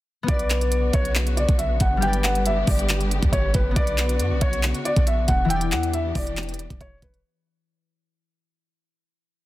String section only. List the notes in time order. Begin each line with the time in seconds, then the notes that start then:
0.28 C#3 D3 B3 F#4
2.02 G3 G4
3.76 C#3 F#4
5.50 E3 B3 D4 G4